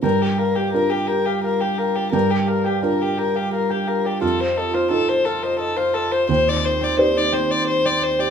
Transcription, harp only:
X:1
M:3/4
L:1/16
Q:1/4=86
K:Gm
V:1 name="Harp"
G B f G B B G f f G f d | G B f G B B G f f G f d | F A e F A A F e e F e c | C E c C E E C c c C c G |]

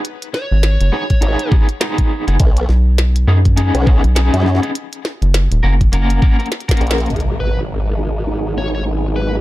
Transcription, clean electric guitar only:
X:1
M:4/4
L:1/16
Q:"Swing 16ths" 1/4=102
K:G#m
V:1 name="Clean electric guitar"
z6 [B,DFG] z [B,DFG]2 [B,DFG] z [B,DFG]3 [B,DFG] | z6 [B,CDG] z [B,CDG]2 [B,CDG] z [B,CDG]3 [B,CDG] | z6 [A,CFA] z [A,CFA]2 [A,CFA] [A,CFA] z [A,CFA]3 | z6 [B,DFG] z [B,DFG]2 [B,DFG] z [B,DFG]3 [B,DFG] |]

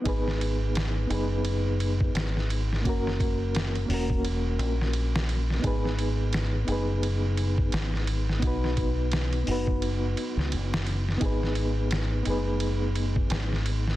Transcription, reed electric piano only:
X:1
M:4/4
L:1/8
Q:"Swing 16ths" 1/4=86
K:G#m
V:1 name="Reed electric piano"
[B,DGB]3 [B,DGB]4- [B,DGB] | [A,CFA]3 [A,CFA]4- [A,CFA] | [B,DGB]3 [B,DGB]4- [B,DGB] | [B,DFB]3 [B,DFB]4- [B,DFB] |
[B,DGB]3 [B,DGB]4- [B,DGB] |]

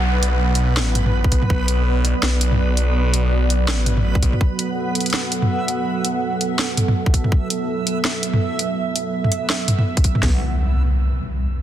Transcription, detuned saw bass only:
X:1
M:4/4
L:1/8
Q:"Swing 16ths" 1/4=165
K:Bm
V:1 name="Detuned saw bass" clef=bass
B,,,4 A,,,2 z B,,, | B,,,3 z B,,,4- | B,,,4 A,,,2 z B,,, | z8 |
z8 | z8 | z8 | B,,, z6 z |]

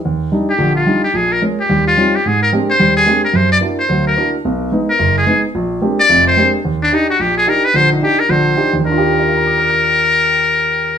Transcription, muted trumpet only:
X:1
M:4/4
L:1/16
Q:"Swing" 1/4=218
K:Eb
V:1 name="Muted trumpet"
z6 G4 F4 G2 | A2 B2 z2 G4 F4 G2 | A2 B2 z2 c4 A4 B2 | c2 d2 z2 c4 B4 z2 |
z6 B4 ^G4 z2 | z6 d4 c4 z2 | z2 D2 E2 _G2 =G2 A2 B2 _c2 | c2 E2 G2 B2 c6- c z |
B16- | B16 |]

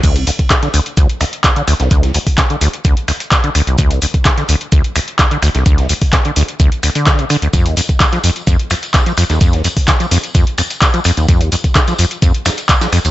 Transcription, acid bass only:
X:1
M:4/4
L:1/16
Q:1/4=128
K:Cmix
V:1 name="Acid bass" clef=bass
D,, C,, D,, z C, D, D,, z D,, z D,, z2 D, D,, C,, | D,, C,, D,, z C, D, D,, z D,, z D,, z2 D, D,, C,, | D,, C,, D,, z C, D, D,, z D,, z D,, z2 D, D,, C,, | D,, C,, D,, z C, D, D,, z D,, z D,, D,2 C, D, D,, |
F,, _E,, F,, z _E, F, F,, z F,, z F,, z2 F, F,, E,, | F,, _E,, F,, z _E, F, F,, z F,, z F,, z2 F, F,, E,, | F,, _E,, F,, z _E, F, F,, z F,, z F,, z2 F, F,, E,, |]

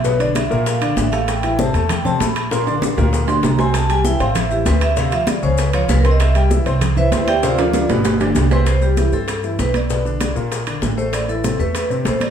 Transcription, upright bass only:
X:1
M:4/4
L:1/8
Q:1/4=195
K:C
V:1 name="Upright bass" clef=bass
B,,,3 ^A,,,3 =A,,,2- | A,,,3 E,,3 _B,,,2- | _B,,,3 D,,3 C,,2- | C,,3 A,,,3 D,,2- |
D,,3 _D,,3 C,,2- | C,,3 C,,3 D,,2- | D,,3 G,,,3 C,,2- | C,,3 G,,3 B,,,2- |
B,,,3 ^A,,,3 =A,,,2- | A,,,3 E,,3 _B,,,2 |]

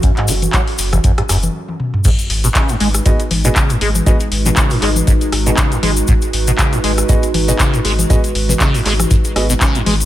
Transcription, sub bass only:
X:1
M:4/4
L:1/8
Q:"Swing 16ths" 1/4=119
K:G#m
V:1 name="Sub bass" clef=bass
z F,,, z F,,, z F,,, z2 | z G,,, z G,,, z G,,, z G,,, | z G,,, z G,,, z G,,, z G,,, | z G,,, z G,,, z G,,, z G,,, |
z G,,, z G,,, z G,,, z G,,, |]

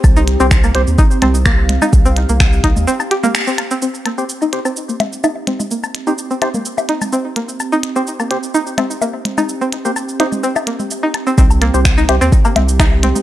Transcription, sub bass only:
X:1
M:4/4
L:1/16
Q:"Swing 16ths" 1/4=127
K:Cm
V:1 name="Sub bass" clef=bass
C,,3 C,,3 C,, E,, z2 C,,4- C,, z | C,,3 C,,3 C,, E,, z8 | z16 | z16 |
z16 | z16 | C,,3 C,,3 C,, E,, z2 C,,4- C,, z |]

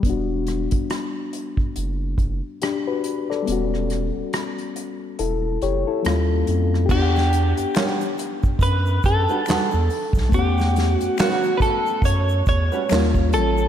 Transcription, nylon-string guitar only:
X:1
M:4/4
L:1/16
Q:"Swing 16ths" 1/4=70
K:Em
V:1 name="Nylon-string guitar"
z16 | z16 | z4 [G,DFB] z6 [G,DFB] [G,DFB] z3 | z4 [G,^CFB] z6 [G,CFB] [G,C^E^A] z3 |]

